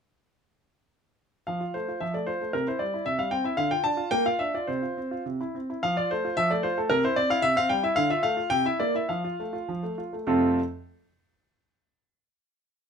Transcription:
1.47 1.60 F3 soft
1.47 1.73 F5 medium
1.61 1.74 F4 soft
1.74 1.88 A3 soft
1.74 2.00 C5 medium
1.88 2.01 F4 soft
2.00 2.13 F3 soft
2.00 2.14 E5 medium
2.14 2.27 A3 soft
2.14 2.27 D5 soft
2.27 2.41 F4 soft
2.27 2.53 C5 medium
2.41 2.54 A3 soft
2.53 2.66 C3 soft
2.53 2.66 A#4 medium
2.67 2.81 E4 soft
2.67 2.80 C5 medium
2.79 2.93 G3 soft
2.79 3.05 D5 medium
2.94 3.07 E4 soft
3.06 3.18 C3 soft
3.06 3.19 E5 medium
3.18 3.32 G3 soft
3.18 3.32 F5 medium
3.31 3.45 C4 soft
3.31 3.44 G5 medium
3.44 3.58 E4 soft
3.44 3.58 E5 medium
3.57 3.71 D3 medium
3.57 3.71 F5 medium
3.71 3.85 F4 soft
3.71 3.84 G5 medium
3.84 3.99 D4 medium
3.84 4.11 A5 medium
3.97 4.11 F4 soft
4.11 4.25 A#3 medium
4.11 4.25 G5 medium
4.26 4.40 F4 soft
4.26 4.40 F5 medium
4.39 4.54 D4 soft
4.39 4.53 E5 medium
4.54 4.68 F4 soft
4.54 4.68 D5 medium
4.67 4.82 C3 soft
4.67 5.22 C5 medium
4.82 4.98 F4 soft
4.97 5.12 C4 soft
5.11 5.26 F4 soft
5.26 5.40 C3 soft
5.41 5.56 E4 soft
5.55 5.70 C4 soft
5.70 5.83 E4 soft
5.83 5.96 F3 medium
5.83 5.96 F5 medium
5.97 6.11 F4 soft
5.97 6.10 D5 medium
6.11 6.25 A3 soft
6.11 6.35 C5 medium
6.25 6.38 F4 soft
6.37 6.50 F3 medium
6.37 6.50 E5 loud
6.50 6.64 A3 medium
6.50 6.64 D5 medium
6.63 6.78 F4 soft
6.63 6.77 C5 medium
6.78 6.91 A3 soft
6.78 6.91 A4 medium
6.90 7.03 C3 medium
6.90 7.03 A#4 medium
7.04 7.18 E4 medium
7.04 7.17 C5 medium
7.16 7.30 C4 soft
7.16 7.29 D5 medium
7.30 7.44 E4 medium
7.30 7.43 F5 medium
7.42 7.56 C3 medium
7.42 7.56 E5 loud
7.56 7.70 C4 medium
7.56 7.70 F5 loud
7.69 7.83 G3 medium
7.69 7.83 G5 medium
7.83 7.96 E4 soft
7.83 7.97 E5 medium
7.96 8.09 D3 medium
7.96 8.09 F5 loud
8.10 8.24 F4 medium
8.10 8.23 E5 medium
8.23 8.37 A3 medium
8.23 8.51 F5 medium
8.37 8.51 F4 soft
8.50 8.65 C3 medium
8.50 8.64 G5 loud
8.66 8.80 E4 soft
8.66 8.80 E5 medium
8.80 8.95 A#3 soft
8.80 8.94 D5 medium
8.95 9.09 E4 soft
8.95 9.10 E5 medium
9.09 9.24 F3 soft
9.09 9.94 F5 medium
9.24 9.40 F4 soft
9.40 9.55 A3 soft
9.53 9.69 F4 soft
9.69 9.83 F3 soft
9.83 9.99 A3 soft
9.98 10.14 F4 soft
10.13 10.26 A3 soft
10.27 10.58 F2 medium
10.27 10.59 C3 medium
10.27 10.59 A3 medium
10.27 10.59 C4 medium
10.27 10.59 F4 medium
10.27 10.59 A4 medium

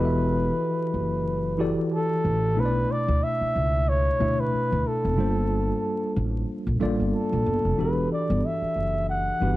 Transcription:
0.00 0.48 E1 medium
0.00 1.58 E3 medium
0.00 1.59 E4 medium
0.00 1.59 F#4 medium
0.00 1.59 G4 medium
0.00 1.60 A4 medium
0.00 1.66 B4 medium
0.00 2.58 B4 medium
0.00 2.57 D#5 medium
0.05 1.19 E5 medium
0.94 1.73 F#1 medium
1.58 2.47 E3 medium
1.58 2.47 E4 medium
1.58 2.48 F#4 medium
1.58 2.48 G4 medium
1.58 2.48 A4 medium
1.58 2.48 D5 medium
1.94 2.62 A4 medium
2.25 2.57 A1 medium
2.56 2.83 B1 medium
2.56 3.75 B2 medium
2.56 3.75 A3 medium
2.56 3.75 D4 medium
2.56 3.76 E4 medium
2.56 2.93 B4 medium
2.56 2.65 C5 medium
2.65 3.79 D5 medium
2.92 3.25 D5 medium
3.08 3.19 D2 medium
3.24 3.90 E5 medium
3.41 muted upright bass stroke medium
3.56 4.08 C#2 medium
3.89 4.42 C#5 loud
4.19 4.46 D2 medium
4.19 5.08 B2 medium
4.19 5.08 A3 medium
4.19 5.09 D4 medium
4.19 5.09 E4 medium
4.19 5.09 E5 medium
4.40 4.89 B4 medium
4.53 muted upright bass stroke soft
4.72 4.83 D2 medium
4.87 6.16 A4 medium
5.05 5.18 E1 medium
5.17 5.71 G1 medium
5.17 6.35 G3 medium
5.17 6.37 A#3 medium
5.17 6.36 D4 medium
5.17 6.36 F4 medium
5.17 6.37 A4 medium
5.17 6.37 C5 medium
6.16 6.42 A1 medium
6.67 6.78 A#1 medium
6.80 6.95 A1 medium
6.80 7.69 G3 medium
6.80 7.70 A#3 medium
6.80 7.69 D4 medium
6.80 7.69 F4 medium
6.80 7.69 A4 medium
6.80 7.70 D5 medium
7.00 7.11 G1 medium
7.14 7.82 A4 medium
7.33 7.43 A#1 medium
7.46 7.61 G1 medium
7.65 7.76 F1 medium
7.78 8.05 E1 medium
7.78 8.96 E3 medium
7.78 8.97 D4 medium
7.78 8.97 F#4 medium
7.78 8.97 G4 medium
7.78 8.98 A4 medium
7.78 8.12 B4 medium
8.13 8.47 D5 medium
8.30 8.41 G1 medium
8.46 9.09 E5 medium
8.62 muted upright bass stroke soft
8.76 9.29 F#1 medium
9.10 9.57 F#5 medium
9.40 9.57 G1 medium
9.40 9.57 E3 medium
9.40 9.57 D4 medium
9.40 9.57 F#4 medium
9.40 9.57 G4 medium
9.40 9.57 B4 medium

